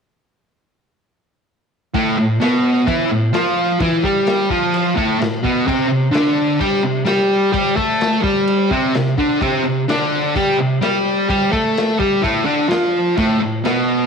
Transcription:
1.94 distorted electric guitar A2 A3, kick, crash
2.18 distorted electric guitar A2
2.40 distorted electric guitar B2 B3, snare, crash
2.87 distorted electric guitar E3 E4, kick, crash
3.11 distorted electric guitar A2
3.33 distorted electric guitar F3 F4, snare, crash
3.80 distorted electric guitar E3 E4, kick, crash
4.03 distorted electric guitar G3 G4, kick
4.27 snare, crash
4.49 distorted electric guitar F3 F4, kick
4.74 crash
4.96 distorted electric guitar A2 A3, kick
5.20 distorted electric guitar A2, snare, crash
5.43 distorted electric guitar B2 B3, kick
5.66 distorted electric guitar C3 C4, kick, crash
5.88 distorted electric guitar C3
6.11 distorted electric guitar D3 D4, crash
6.15 snare
6.60 distorted electric guitar G3 G4, kick, crash
6.83 distorted electric guitar C3
7.05 distorted electric guitar G3 G4, snare, crash
7.52 distorted electric guitar G3 G4, kick, crash
7.76 distorted electric guitar A3 A4, kick
8.01 snare, crash
8.22 distorted electric guitar G3 G4, kick
8.47 crash
8.71 distorted electric guitar C3 C4, kick
8.94 distorted electric guitar C3, snare, crash
9.18 distorted electric guitar D3 D4, kick
9.41 distorted electric guitar C3 C4, kick, crash
9.65 distorted electric guitar C3
9.88 distorted electric guitar D3 D4, snare, crash
10.35 distorted electric guitar G3 G4, kick, crash
10.57 distorted electric guitar C3
10.81 distorted electric guitar G3 G4, snare, crash
11.29 distorted electric guitar G3 G4, kick, crash
11.52 distorted electric guitar A3 A4, kick
11.77 snare, crash
11.99 distorted electric guitar G3 G4, kick
12.22 distorted electric guitar A2 A3, kick, crash
12.45 distorted electric guitar D3 D4
12.68 distorted electric guitar F3 F4, snare, crash
13.17 distorted electric guitar A2 A3, kick, crash
13.41 distorted electric guitar A2
13.65 distorted electric guitar B2 B3, snare, crash

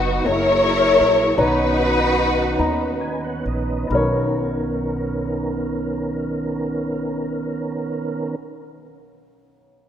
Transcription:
Already playing: upright bass F#1, tonewheel organ F#3 B3 D#4 B4, string section B3 D#4 F#4, upright piano B3 D#4 F#4 D#5
0.24 upright bass F#1, tonewheel organ F#3 A#3 E4 G#4, upright piano A#3 F#4 G#4 D#5, string section E4 A#4 C#5
0.32 upright piano E5
1.00 upright bass A#1
1.37 upright bass B1, upright piano B2 B3 D#4 C#5 A#5, tonewheel organ D#3 B3 C#4 B4, string section D#4 F#4
1.41 string section B4
2.58 upright bass D#2, upright piano B3 D#4 D#5 A#5
3.01 tonewheel organ G#5
3.25 tonewheel organ F#5
3.46 upright bass A#1, tonewheel organ D#5
3.87 upright bass B1, upright piano B1 B3 D#4
3.92 tonewheel organ D#3 B3 C#4 A#4, upright piano A#4 C#5

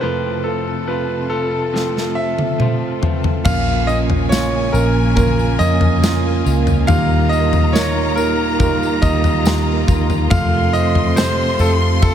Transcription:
Already playing: string section C3
0.01 clean electric guitar F2 C3 F3 A3 C4 F4, tine electric piano F2 C3 C4 F4 A4, string section A3 F4 A4, grand piano B4
0.44 tine electric piano C4 F4 B4, grand piano A4
0.87 clean electric guitar F3 A3 C4 F4, tine electric piano C4 F4 A4, grand piano B4
1.30 clean electric guitar F3 A3 C4 F4, tine electric piano C4 F4 A4, grand piano A4
1.73 clean electric guitar F2 C3 F3 A3 C4 F4, tine electric piano C4 F4 A4, snare
1.97 snare
2.15 tine electric piano C4 F4 C5, grand piano E5
2.39 high tom
2.58 clean electric guitar F3 A3 C4 F4, tine electric piano C4 F4 C5, mid tom
3.02 clean electric guitar F3 A3 C4 F4, tine electric piano C4 F4 B4, floor tom
3.24 floor tom
3.45 fingered electric bass A#1, clean electric guitar A#2 F3 A#3 C#4 F4, tine electric piano A#2 F3 A#3 C#4 F4 A#4, string section C#3 F3 A#3 F4, grand piano F5, violin section G#5, kick, floor tom, crash, tambourine
3.87 tine electric piano A#3 C#4 F4 A#4, clean electric guitar A#3 C#4 F4, grand piano D#5, tambourine
4.10 floor tom
4.29 clean electric guitar F3 A#3 C#4, tine electric piano A#3 C#4 F4 A#4, grand piano C#5, snare, tambourine
4.33 clean electric guitar F4
4.72 fingered electric bass A#1, tine electric piano A#3 C#4 F4 A#4, grand piano A#4, tambourine
5.16 tine electric piano A#3 C#4 F4 A#4, grand piano A#4, kick, floor tom, tambourine
5.39 tambourine
5.59 fingered electric bass F2, tine electric piano A#3 C#4 F4 C#5, clean electric guitar A#3 C#4 F4, grand piano D#5, tambourine
5.81 floor tom
6.01 clean electric guitar F3 A#3 C#4 F4, tine electric piano A#3 C#4 F4 A#4, snare, tambourine
6.45 fingered electric bass C#2, tine electric piano A#3 C#4 F4 A#4, clean electric guitar A#3 C#4 F4, tambourine
6.67 floor tom, tambourine
6.87 fingered electric bass D#2, tine electric piano A#2 A#3 D#4 F4 G4, clean electric guitar D#3 G3 A#3 D#4 F4, string section D#3 G3 A#3, grand piano F5, violin section A#5, floor tom, tambourine
7.29 tine electric piano A#3 D#4 F4 A#4, clean electric guitar D#4 F4, grand piano D#5, tambourine
7.34 clean electric guitar A#3
7.53 floor tom, tambourine
7.73 clean electric guitar G3 A#3 D#4 F4, tine electric piano A#3 D#4 F4 A#4, grand piano C#5, snare, tambourine
8.16 tine electric piano A#3 D#4 F4 G4, grand piano A#4, tambourine
8.59 tine electric piano A#3 D#4 F4 G4, grand piano A#4, kick, floor tom, tambourine
8.83 tambourine
9.02 fingered electric bass D#2, tine electric piano A#3 D#4 F4 G4, clean electric guitar A#3 D#4 F4, grand piano D#5, kick, tambourine
9.24 floor tom, tambourine
9.44 clean electric guitar G3 A#3 D#4 F4, tine electric piano A#3 D#4 F4 G4, snare, tambourine
9.87 fingered electric bass D#2, tine electric piano A#3 D#4 F4 A#4, clean electric guitar A#3 D#4 F4, kick, tambourine
10.10 floor tom, tambourine
10.30 clean electric guitar F2 C3 F3 A3 C4 F4, fingered electric bass F2, string section C3 F3 A3, tine electric piano C3 A3 C4 F4 A4, grand piano F5, violin section C6, kick, floor tom, tambourine
10.72 clean electric guitar F3 A3 C4 F4, tine electric piano A3 C4 F4 C5, grand piano D#5, tambourine
10.95 floor tom
11.15 clean electric guitar F3 A3 C4 F4, tine electric piano A3 C4 F4 G4, grand piano C5, snare, tambourine
11.58 fingered electric bass F2, tine electric piano A3 C4 F4 A4, grand piano A4, tambourine
12.01 tine electric piano A3 C4 F4 A4, grand piano A4, kick, floor tom, tambourine

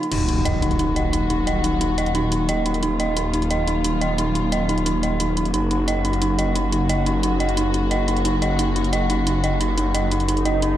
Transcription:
0.03 closed hi-hat
0.11 detuned saw bass D#1, string section D#3 F#3 A#3 F#4, synth bell D#4, closed hi-hat, crash, impact
0.28 synth bell D#4, closed hi-hat
0.45 synth bell D#5, closed hi-hat
0.62 synth bell D#4, closed hi-hat
0.71 closed hi-hat
0.79 synth bell D#4, closed hi-hat
0.96 synth bell D#5, closed hi-hat
1.13 synth bell D#4, closed hi-hat
1.30 synth bell D#4, closed hi-hat
1.47 synth bell D#5, closed hi-hat
1.64 synth bell D#4, closed hi-hat
1.81 synth bell D#4, closed hi-hat
1.98 synth bell D#5, closed hi-hat
2.06 closed hi-hat
2.15 synth bell D#4, closed hi-hat
2.32 synth bell D#4, closed hi-hat
2.49 synth bell D#5, closed hi-hat
2.66 synth bell D#4, closed hi-hat
2.74 closed hi-hat
2.83 synth bell D#4, string section F4, closed hi-hat
3.00 synth bell D#5, closed hi-hat
3.17 synth bell D#4, closed hi-hat
3.34 synth bell D#4, closed hi-hat
3.42 closed hi-hat
3.51 synth bell D#5, closed hi-hat
3.67 synth bell D#4, closed hi-hat
3.84 synth bell D#4, closed hi-hat
4.01 synth bell D#5, closed hi-hat
4.18 synth bell D#4, closed hi-hat
4.35 synth bell D#4, closed hi-hat
4.52 synth bell D#5, closed hi-hat
4.69 synth bell D#4, closed hi-hat
4.78 closed hi-hat
4.86 synth bell D#4, closed hi-hat
5.03 synth bell D#5, closed hi-hat
5.20 synth bell D#4, closed hi-hat
5.37 synth bell D#4, closed hi-hat
5.45 closed hi-hat
5.54 detuned saw bass F#1, string section C#3 F#4, synth bell D#4, closed hi-hat
5.71 synth bell D#4, closed hi-hat
5.88 synth bell D#5, closed hi-hat
6.05 synth bell D#4, closed hi-hat
6.13 closed hi-hat
6.22 synth bell D#4, closed hi-hat
6.39 synth bell D#5, closed hi-hat
6.55 synth bell D#4, closed hi-hat
6.72 synth bell D#4, closed hi-hat
6.89 synth bell D#5, closed hi-hat
7.06 synth bell D#4, closed hi-hat
7.23 synth bell D#4, closed hi-hat
7.40 synth bell D#5, closed hi-hat
7.49 closed hi-hat
7.57 synth bell D#4, closed hi-hat
7.74 synth bell D#4, closed hi-hat
7.91 synth bell D#5, closed hi-hat
8.08 synth bell D#4, closed hi-hat
8.17 closed hi-hat
8.25 synth bell D#4, closed hi-hat
8.42 synth bell D#5, closed hi-hat
8.59 synth bell D#4, closed hi-hat
8.76 synth bell D#4, closed hi-hat
8.84 closed hi-hat
8.93 synth bell D#5, closed hi-hat
9.10 synth bell D#4, closed hi-hat
9.27 synth bell D#4, closed hi-hat
9.44 synth bell D#5, closed hi-hat
9.61 synth bell D#4, closed hi-hat
9.78 synth bell D#4, closed hi-hat
9.94 synth bell D#5, closed hi-hat
10.11 synth bell D#4, closed hi-hat
10.20 closed hi-hat
10.28 synth bell D#4, closed hi-hat, swell
10.37 closed hi-hat
10.45 synth bell D#5, closed hi-hat
10.62 synth bell D#4, closed hi-hat

